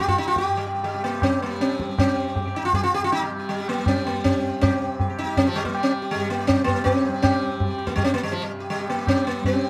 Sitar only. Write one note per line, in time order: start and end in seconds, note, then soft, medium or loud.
0.08 0.18 F4 loud
0.18 0.27 D#4 loud
0.28 0.37 F4 loud
0.38 0.45 G4 medium
0.46 0.64 G4 soft
0.57 0.66 G3 medium
0.67 0.74 G4 soft
0.75 0.93 G4 soft
0.84 1.04 G3 medium
0.94 1.12 G4 soft
1.04 1.22 A#3 medium
1.14 1.31 G4 soft
1.23 1.42 C4 medium
1.42 1.61 A#3 medium
1.51 1.69 G4 soft
1.61 1.98 C4 medium
1.71 1.80 G4 soft
1.81 1.90 G4 soft
1.91 2.08 G4 soft
2.00 2.58 C4 loud
2.09 2.26 G4 soft
2.28 2.45 G4 soft
2.47 2.64 G4 soft
2.56 2.65 D#4 medium
2.65 2.74 F4 loud
2.75 2.83 G4 loud
2.83 2.93 F4 loud
2.94 3.03 G4 loud
3.04 3.12 F4 loud
3.12 3.22 D#4 loud
3.22 3.31 G3 medium
3.39 3.57 G4 soft
3.49 3.68 G3 medium
3.60 3.77 G4 soft
3.69 3.87 A#3 medium
3.78 3.95 G4 soft
3.88 4.06 C4 medium
3.96 4.14 G4 soft
4.07 4.24 A#3 medium
4.16 4.32 G4 soft
4.24 4.60 C4 medium
4.33 4.41 G4 soft
4.42 4.60 G4 soft
4.61 5.20 C4 loud
4.71 4.81 G4 soft
4.82 4.99 G4 soft
5.01 5.08 G4 soft
5.10 5.26 G4 soft
5.19 5.38 D#4 loud
5.27 5.45 G4 soft
5.37 5.47 C4 loud
5.47 5.56 F3 loud
5.56 5.65 G3 loud
5.65 5.83 A#3 medium
5.73 5.91 G4 soft
5.83 5.92 C4 medium
5.92 6.01 G4 soft
6.02 6.19 G4 soft
6.11 6.30 G3 medium
6.21 6.38 G4 soft
6.30 6.47 A#3 medium
6.40 6.56 G4 soft
6.47 6.64 C4 loud
6.58 6.75 G4 soft
6.64 6.84 A#3 loud
6.77 6.94 G4 soft
6.84 7.21 C4 loud
6.95 7.04 G4 soft
7.06 7.13 G4 soft
7.14 7.31 G4 soft
7.22 7.74 C4 loud
7.34 7.41 G4 soft
7.42 7.50 G4 soft
7.51 7.68 G4 soft
7.70 7.77 G4 soft
7.79 7.96 G4 soft
7.87 7.95 A#3 medium
7.96 8.04 G3 medium
8.04 8.13 C4 loud
8.14 8.23 A#3 medium
8.23 8.33 G3 medium
8.32 8.42 F3 medium
8.42 8.51 G3 medium
8.60 8.78 G4 soft
8.70 8.89 G3 medium
8.79 8.97 G4 soft
8.90 9.08 A#3 medium
8.99 9.16 G4 soft
9.08 9.27 C4 medium
9.17 9.34 G4 soft
9.27 9.45 A#3 medium
9.46 9.70 C4 medium
9.53 9.60 G4 soft
9.61 9.70 G4 soft